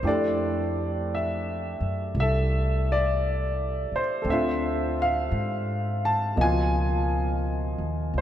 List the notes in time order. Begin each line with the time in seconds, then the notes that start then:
0.03 F2 A3 D4 E4 G4
0.07 A4 D5
1.15 E5
1.80 F#2
2.15 C2
2.20 A4 E5
2.92 D5
3.92 C5, muted upright bass stroke
4.22 D2 C4 A4
4.29 D4 F4 C5 E5
5.02 F5
5.31 G#2
6.05 A5
6.36 C#2 B2 F3 A#3 D#5
6.41 F4 G#5
7.78 D#2
8.14 C#2
8.18 C5